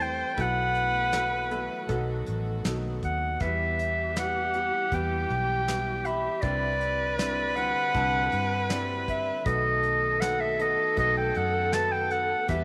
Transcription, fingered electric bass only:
0.00 0.22 E2 medium
0.38 1.67 B1 medium
1.89 2.21 B1 medium
2.28 2.62 A1 medium
2.65 2.99 B1 medium
3.03 3.37 D#2 medium
3.41 4.70 E2 medium
4.92 5.24 E2 medium
5.30 6.27 B1 medium
6.43 7.72 C2 medium
7.95 8.27 C2 medium
8.33 9.29 G2 medium
9.46 10.75 B1 medium
10.98 11.30 B1 loud
11.36 12.33 F#2 medium
12.49 12.64 E2 medium

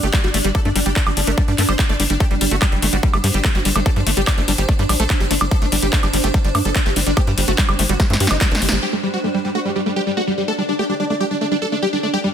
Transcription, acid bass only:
0.03 0.07 A3 loud
0.13 0.18 G3 loud
0.24 0.28 G3 medium
0.34 0.38 A3 loud
0.44 0.49 G3 loud
0.55 0.59 G3 medium
0.65 0.69 A3 loud
0.76 0.80 G3 loud
0.86 0.90 G3 medium
0.96 1.00 A3 loud
1.07 1.11 G3 loud
1.17 1.21 G3 medium
1.27 1.31 A3 loud
1.38 1.42 G3 loud
1.48 1.52 G3 medium
1.58 1.62 A3 loud
1.69 1.73 G3 loud
1.79 1.83 G3 medium
1.89 1.94 A3 loud
2.00 2.04 G3 loud
2.10 2.14 G3 medium
2.20 2.25 A3 loud
2.31 2.35 G3 loud
2.41 2.45 G3 medium
2.51 2.56 A3 loud
2.62 2.66 G3 loud
2.72 2.76 G3 medium
2.82 2.87 A3 loud
2.93 2.97 G3 loud
3.03 3.07 G3 medium
3.13 3.18 A3 loud
3.24 3.28 G3 loud
3.34 3.38 G3 medium
3.44 3.49 A3 loud
3.55 3.59 G3 loud
3.65 3.69 G3 medium
3.76 3.80 A3 loud
3.86 3.90 G3 loud
3.96 4.00 G3 medium
4.07 4.11 A3 loud
4.17 4.21 G3 loud
4.27 4.31 G3 medium
4.38 4.42 A3 loud
4.48 4.52 G3 loud
4.58 4.62 G3 medium
4.69 4.73 A3 loud
4.79 4.83 G3 loud
4.89 4.94 G3 medium
5.00 5.04 A3 loud
5.10 5.14 G3 loud
5.20 5.25 G3 medium
5.31 5.35 A3 loud
5.41 5.45 G3 loud
5.51 5.56 G3 medium
5.62 5.66 A3 loud
5.72 5.76 G3 loud
5.82 5.87 G3 medium
5.93 5.97 A3 loud
6.03 6.07 G3 loud
6.13 6.18 G3 medium
6.24 6.28 A3 loud
6.34 6.38 G3 loud
6.45 6.49 G3 medium
6.55 6.59 A3 loud
6.65 6.69 G3 loud
6.76 6.80 G3 medium
6.86 6.90 A3 loud
6.96 7.00 G3 loud
7.07 7.11 G3 medium
7.17 7.21 A3 loud
7.27 7.32 G3 loud
7.38 7.42 G3 medium
7.48 7.52 A3 loud
7.58 7.62 G3 loud
7.69 7.73 G3 medium
7.79 7.83 A3 loud
7.89 7.94 G3 loud
8.00 8.04 G3 medium
8.10 8.14 A3 loud
8.20 8.27 G4 loud
8.31 8.33 G3 medium
8.41 8.44 A3 medium
8.51 8.63 A#3 medium
8.62 8.66 G3 medium
8.72 8.78 A#3 medium
8.82 8.87 G3 medium
8.93 8.97 A3 loud
9.03 9.07 G3 loud
9.13 9.18 G3 medium
9.24 9.28 A3 loud
9.34 9.38 G3 loud
9.44 9.49 G3 medium
9.55 9.59 A3 loud
9.65 9.69 G3 loud
9.76 9.80 G3 medium
9.86 9.90 A3 medium
9.96 10.00 G3 loud
10.07 10.11 G3 medium
10.17 10.21 A3 loud
10.27 10.31 G3 loud
10.38 10.42 G3 medium
10.48 10.52 A3 loud
10.58 10.62 G3 loud
10.69 10.73 G3 medium
10.79 10.83 A3 loud
10.89 10.94 G3 loud
11.00 11.04 G3 medium
11.10 11.14 A3 loud
11.20 11.25 G3 loud
11.31 11.35 G3 medium
11.41 11.45 A3 loud
11.51 11.56 G3 medium
11.62 11.66 G3 medium
11.72 11.76 A3 loud
11.82 11.87 G3 loud
11.93 11.97 G3 medium
12.03 12.07 A3 loud
12.14 12.18 G3 loud
12.24 12.28 G3 medium

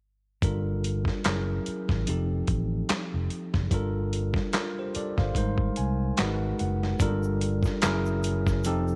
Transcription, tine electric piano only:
0.43 1.25 G3 medium
0.43 1.25 D4 medium
0.43 1.25 F4 medium
0.43 1.25 A4 medium
0.43 1.25 A#4 medium
1.25 2.07 F#3 medium
1.25 2.07 C#4 soft
1.25 2.07 E4 medium
1.25 2.07 G#4 medium
1.25 2.07 A#4 medium
2.06 3.67 F3 medium
2.06 3.68 C4 soft
2.06 3.68 D#4 medium
2.06 3.69 G4 medium
2.06 3.69 A4 medium
3.71 5.32 G3 medium
3.71 5.32 D4 medium
3.71 4.52 F4 medium
3.71 4.53 A4 medium
3.71 4.53 A#4 medium
4.55 4.76 F4 soft
4.55 4.76 A#4 medium
4.79 4.95 G4 soft
4.79 4.95 C5 medium
4.96 5.17 A4 medium
4.96 5.17 D5 medium
5.19 5.37 C5 medium
5.19 5.57 F5 medium
5.36 6.18 G3 medium
5.36 6.17 G#3 medium
5.36 6.18 D#4 medium
5.36 6.18 A#4 medium
5.36 6.19 C5 medium
5.77 6.15 G#5 medium
6.18 7.00 G#3 medium
6.18 7.00 D#4 medium
6.18 7.00 F#4 medium
6.18 7.01 A#4 medium
6.18 7.01 B4 medium
6.18 6.56 F#5 medium
6.60 6.97 F#5 soft
7.01 7.82 G3 medium
7.01 7.82 D4 medium
7.01 7.83 F4 medium
7.01 7.83 A4 medium
7.01 7.83 A#4 medium
7.82 8.50 F#3 medium
7.82 8.50 C#4 medium
7.82 8.51 E4 medium
7.82 8.51 G#4 medium
7.82 8.51 A#4 medium
8.65 8.96 F3 medium
8.65 8.96 C4 medium
8.65 8.96 D#4 medium
8.65 8.96 G4 medium
8.65 8.96 A4 medium

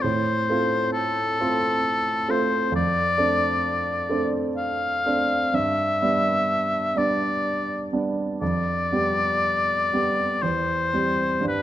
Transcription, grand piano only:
0.04 0.48 A2 soft
0.50 1.36 A3 soft
0.50 1.36 C4 soft
0.50 1.36 F4 soft
1.40 2.25 A3 soft
1.40 2.26 C4 soft
1.40 2.26 F4 soft
2.29 2.69 A3 soft
2.29 2.69 C4 soft
2.29 2.70 F4 soft
2.72 3.16 F2 soft
3.18 4.06 A3 soft
3.18 4.06 C4 soft
3.18 4.06 D4 soft
4.09 5.02 A3 soft
4.09 5.02 C4 soft
4.09 5.03 D4 soft
5.06 5.51 A3 soft
5.06 5.51 C4 soft
5.06 5.51 D4 soft
5.54 6.01 G2 soft
6.02 6.92 G3 soft
6.02 6.92 B3 soft
6.02 6.92 D4 soft
6.95 7.87 G3 soft
6.95 7.87 B3 soft
6.95 7.87 D4 soft
7.93 8.38 G3 soft
7.93 8.38 B3 soft
7.93 8.38 D4 soft
8.41 8.91 F2 soft
8.92 9.88 G3 soft
8.92 9.88 B3 soft
8.92 9.89 G4 soft
9.93 10.39 G3 soft
9.93 10.39 B3 soft
9.93 10.39 G4 soft
10.43 10.93 E2 soft
10.94 11.40 G3 soft
10.94 11.43 C4 soft
10.94 11.42 G4 soft
11.41 11.62 G2 soft
11.41 11.62 G3 soft
11.41 11.62 D4 soft
11.41 11.62 G4 soft

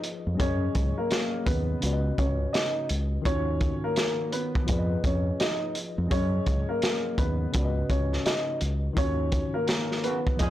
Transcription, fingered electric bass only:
0.27 0.37 F2 medium
0.40 0.67 F#2 loud
0.76 0.92 C#2 medium
1.47 1.74 D#2 medium
1.83 2.10 C#2 loud
2.18 2.45 C#2 loud
2.90 3.17 C#2 medium
3.26 3.69 D#2 loud
4.69 4.96 F2 loud
5.04 5.31 F2 medium
5.98 6.08 F2 loud
6.11 6.38 F#2 loud
6.47 6.64 C#2 medium
7.18 7.45 D#2 loud
7.55 7.82 C#2 loud
7.90 8.17 C#2 loud
8.62 8.88 C#2 medium
8.97 9.41 D#2 loud
10.40 10.50 F2 loud

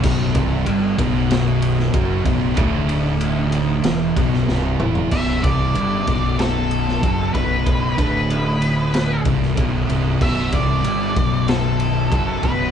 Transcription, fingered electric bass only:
0.04 0.33 B0 loud
0.35 0.65 C1 loud
0.67 0.97 G1 loud
0.98 1.90 B0 loud
1.93 2.23 F#1 loud
2.26 2.55 B0 loud
2.57 3.81 D1 medium
3.85 4.14 E1 medium
4.16 4.46 B0 loud
4.48 4.78 C1 medium
4.80 5.10 E1 medium
5.12 5.42 B0 medium
5.44 5.74 C1 medium
5.76 6.05 G1 medium
6.07 6.99 B0 loud
7.03 7.32 F#1 medium
7.35 7.94 B0 loud
7.98 9.21 D1 medium
9.26 9.55 C1 loud
9.57 9.87 B0 loud
9.88 10.18 C1 loud
10.21 10.51 B0 medium
10.53 10.83 C1 medium
10.84 11.14 G1 loud
11.17 12.08 B0 loud
12.11 12.41 F#1 medium
12.43 12.71 B0 loud

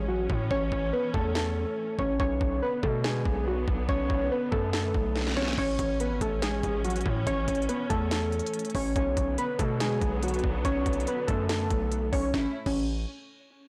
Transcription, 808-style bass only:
0.00 0.28 A1 loud
0.30 0.50 A2 loud
0.51 0.71 A1 loud
0.72 0.92 A1 loud
1.14 1.65 E2 loud
1.99 2.19 A1 loud
2.20 2.40 B1 loud
2.41 2.61 B1 loud
2.83 3.24 B2 loud
3.25 3.66 B1 loud
3.68 3.88 B1 loud
3.89 4.09 B1 loud
4.10 4.30 B1 loud
4.52 4.93 F#2 loud
4.94 5.55 B1 loud
5.58 5.78 A1 loud
5.79 6.13 A1 loud
6.11 6.21 G#1 loud
6.21 6.62 A1 loud
6.63 7.04 A1 loud
7.06 7.26 A2 loud
7.27 7.47 A1 loud
7.48 7.68 A1 loud
7.90 8.41 E2 loud
8.75 8.95 A1 loud
8.96 9.16 B1 loud
9.17 9.37 B1 loud
9.59 10.00 B2 loud
10.02 10.42 B1 loud
10.44 10.64 B1 loud
10.65 10.85 B1 loud
10.86 11.06 B1 loud
11.28 11.69 F#2 loud
11.71 12.11 B1 loud
12.13 12.33 B1 loud
12.34 12.46 A1 loud
12.66 13.05 A1 loud

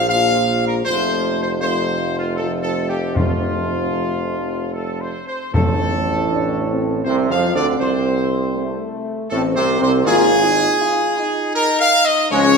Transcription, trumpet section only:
0.09 0.62 F5 loud
0.66 0.75 A#4 medium
0.84 1.37 C5 loud
1.43 1.51 C5 medium
1.61 2.14 C5 loud
2.18 2.36 F4 medium
2.36 2.48 A4 medium
2.63 2.88 A4 medium
2.89 3.14 G4 medium
3.15 4.74 F4 medium
4.73 4.99 A4 medium
5.00 5.25 C5 medium
5.27 5.52 C5 medium
5.54 7.01 A4 medium
7.05 7.16 C5 medium
7.30 7.53 F5 medium
7.55 7.66 D5 medium
7.80 8.89 C5 medium
9.30 9.41 A4 medium
9.56 9.79 C5 medium
9.82 9.93 C5 medium
10.06 11.51 G#4 loud
11.54 11.78 A#4 loud
11.80 12.03 F5 loud
12.05 12.30 D#5 loud
12.31 12.58 C#5 loud

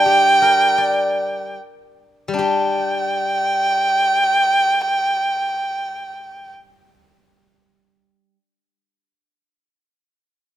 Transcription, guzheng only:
0.00 1.55 G3 medium
0.00 1.16 D4 medium
0.06 1.56 G4 medium
0.42 1.97 A#4 medium
0.78 2.39 D5 medium
2.28 8.35 G3 medium
2.34 7.14 D4 medium
2.39 7.20 G4 medium

